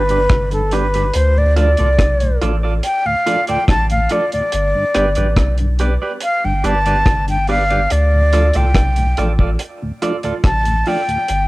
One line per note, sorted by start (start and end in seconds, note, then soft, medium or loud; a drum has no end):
0.00 0.27 G1 loud
0.00 0.52 B4 medium
0.09 0.19 G2 medium
0.09 0.19 D3 medium
0.09 0.20 D4 medium
0.09 0.20 G4 medium
0.09 0.20 B4 medium
0.09 closed hi-hat soft
0.29 1.11 G1 medium
0.29 kick loud
0.29 cross-stick loud
0.29 closed hi-hat medium
0.51 0.62 G2 medium
0.51 0.62 D3 medium
0.51 0.75 A4 medium
0.51 closed hi-hat medium
0.71 0.83 G3 medium
0.71 0.83 B3 medium
0.71 0.86 D4 medium
0.71 0.84 D4 medium
0.71 0.86 G4 medium
0.71 0.86 B4 medium
0.71 1.17 B4 medium
0.71 closed hi-hat medium
0.94 1.04 G2 medium
0.94 1.04 D3 medium
0.94 1.05 D4 medium
0.94 1.05 G4 medium
0.94 1.04 B4 medium
0.94 closed hi-hat medium
1.14 1.75 D2 loud
1.14 1.40 C5 loud
1.14 closed hi-hat loud
1.37 1.47 D2 medium
1.37 1.46 A2 medium
1.37 1.58 D5 medium
1.56 1.67 F3 medium
1.56 1.68 A3 medium
1.56 1.68 D4 medium
1.56 1.70 F4 medium
1.56 1.70 A4 medium
1.56 1.71 D5 medium
1.56 2.39 D5 medium
1.56 closed hi-hat medium
1.77 1.98 C2 medium
1.77 1.88 D2 medium
1.77 1.88 A2 medium
1.77 1.89 F4 soft
1.77 1.89 A4 medium
1.77 1.89 D5 medium
1.77 closed hi-hat medium
1.99 2.38 B1 medium
1.99 kick loud
1.99 cross-stick loud
1.99 closed hi-hat loud
2.20 2.31 D2 medium
2.20 2.31 A2 medium
2.20 closed hi-hat medium
2.41 2.81 A1 medium
2.41 2.52 F3 medium
2.41 2.52 A3 medium
2.41 2.52 D4 medium
2.41 2.55 F4 medium
2.41 2.55 A4 medium
2.41 2.56 D5 medium
2.41 closed hi-hat medium
2.63 2.74 F4 soft
2.63 2.73 A4 medium
2.63 2.73 D5 medium
2.83 3.08 G5 loud
2.83 closed hi-hat medium
3.06 3.15 D2 medium
3.06 3.15 A2 medium
3.06 3.48 F5 loud
3.26 3.37 F3 medium
3.26 3.37 A3 medium
3.26 3.37 D4 medium
3.26 3.40 F4 medium
3.26 3.40 A4 medium
3.26 3.40 D5 medium
3.26 closed hi-hat medium
3.47 3.58 D2 medium
3.47 3.58 A2 medium
3.47 3.58 F4 medium
3.47 3.58 A4 medium
3.47 3.58 D5 medium
3.47 3.67 G5 loud
3.47 closed hi-hat soft
3.68 4.07 A1 loud
3.68 3.89 A5 loud
3.68 kick loud
3.68 cross-stick loud
3.68 closed hi-hat medium
3.90 4.00 D2 medium
3.90 4.00 A2 medium
3.90 4.13 F5 medium
3.90 closed hi-hat medium
4.09 4.21 F3 medium
4.09 4.21 A3 medium
4.09 4.21 D4 medium
4.09 4.24 F4 medium
4.09 4.25 A4 medium
4.09 4.32 D5 medium
4.09 4.25 D5 medium
4.09 closed hi-hat medium
4.32 4.42 D2 medium
4.32 4.42 A2 medium
4.32 5.55 D5 medium
4.32 closed hi-hat medium
4.52 4.73 G1 loud
4.52 closed hi-hat loud
4.75 4.84 G2 medium
4.75 4.85 D3 medium
4.94 5.15 G1 loud
4.94 5.06 G3 medium
4.94 5.06 B3 medium
4.94 5.06 D4 medium
4.94 5.08 G4 medium
4.94 5.08 B4 medium
4.94 5.09 D5 medium
4.94 cross-stick medium
4.94 closed hi-hat medium
5.15 5.36 A1 medium
5.15 5.27 G2 medium
5.15 5.27 D3 medium
5.15 5.27 G4 soft
5.15 5.27 B4 medium
5.15 5.27 D5 medium
5.15 closed hi-hat medium
5.36 5.97 B1 loud
5.36 kick loud
5.36 cross-stick loud
5.36 closed hi-hat loud
5.58 5.69 G2 medium
5.58 5.69 D3 medium
5.58 closed hi-hat medium
5.79 5.90 G3 medium
5.79 5.90 B3 medium
5.79 5.90 D4 medium
5.79 5.93 G4 medium
5.79 5.93 B4 medium
5.79 5.94 D5 medium
5.79 closed hi-hat medium
6.02 6.12 G4 medium
6.02 6.12 B4 medium
6.02 6.11 D5 medium
6.21 6.47 F5 loud
6.21 closed hi-hat medium
6.44 6.63 G1 medium
6.44 6.53 G2 medium
6.44 6.54 D3 medium
6.44 6.67 G5 medium
6.64 7.03 G1 loud
6.64 6.75 G3 medium
6.64 6.75 B3 medium
6.64 6.75 D4 medium
6.64 6.77 G4 medium
6.64 6.78 B4 medium
6.64 6.78 D5 medium
6.64 7.29 A5 loud
6.64 closed hi-hat medium
6.86 6.96 G2 medium
6.86 6.96 D3 medium
6.86 6.96 G4 soft
6.86 6.96 B4 medium
6.86 6.96 D5 medium
6.86 closed hi-hat medium
7.06 7.87 G1 medium
7.06 kick loud
7.06 cross-stick loud
7.06 closed hi-hat medium
7.28 7.38 G2 medium
7.28 7.38 D3 medium
7.28 7.48 G5 medium
7.28 closed hi-hat soft
7.47 7.59 G3 medium
7.47 7.59 B3 medium
7.47 7.59 D4 medium
7.47 7.62 G4 medium
7.47 7.62 B4 medium
7.47 7.63 D5 medium
7.47 7.93 F5 loud
7.47 open hi-hat soft
7.70 7.80 G2 medium
7.70 7.80 D3 medium
7.70 7.81 G4 medium
7.70 7.80 B4 medium
7.70 7.80 D5 medium
7.70 closed hi-hat medium
7.90 8.51 D2 loud
7.90 8.58 D5 loud
7.90 closed hi-hat loud
8.13 8.22 D2 medium
8.13 8.22 A2 medium
8.33 8.43 F3 medium
8.33 8.43 A3 medium
8.33 8.43 D4 medium
8.33 8.46 F4 medium
8.33 8.47 A4 medium
8.33 8.47 D5 medium
8.33 closed hi-hat medium
8.54 8.74 C2 medium
8.54 8.65 D2 medium
8.54 8.65 A2 medium
8.54 8.65 F4 medium
8.54 8.65 A4 medium
8.54 8.65 D5 medium
8.54 9.40 G5 medium
8.54 closed hi-hat medium
8.75 9.14 B1 medium
8.75 kick loud
8.75 cross-stick loud
8.75 closed hi-hat medium
8.96 9.07 D2 medium
8.96 9.07 A2 medium
8.96 closed hi-hat medium
9.17 9.57 A1 loud
9.17 9.28 F3 medium
9.17 9.28 A3 medium
9.17 9.28 D4 medium
9.17 9.31 F4 medium
9.17 9.31 A4 medium
9.17 9.32 D5 medium
9.17 closed hi-hat medium
9.39 9.50 F4 medium
9.39 9.50 A4 medium
9.39 9.49 D5 medium
9.39 kick medium
9.59 closed hi-hat medium
9.82 9.91 D2 medium
9.82 9.92 A2 medium
10.02 10.12 F3 medium
10.02 10.12 A3 medium
10.02 10.13 D4 medium
10.02 10.16 F4 medium
10.02 10.16 A4 medium
10.02 10.16 D5 medium
10.02 closed hi-hat medium
10.23 10.33 D2 medium
10.23 10.33 A2 medium
10.23 10.34 F4 medium
10.23 10.34 A4 medium
10.23 10.34 D5 medium
10.23 closed hi-hat soft
10.44 10.83 A1 loud
10.44 10.89 A5 loud
10.44 kick loud
10.44 cross-stick medium
10.44 closed hi-hat medium
10.65 10.76 D2 medium
10.65 10.76 A2 medium
10.65 closed hi-hat medium
10.86 10.97 F3 medium
10.86 10.97 A3 medium
10.86 10.97 D4 medium
10.86 11.00 F4 medium
10.86 11.00 A4 medium
10.86 11.01 D5 medium
10.86 11.48 G5 loud
10.86 open hi-hat soft
11.08 11.18 D2 medium
11.08 11.18 A2 medium
11.08 closed hi-hat medium
11.28 11.48 G1 loud
11.28 closed hi-hat medium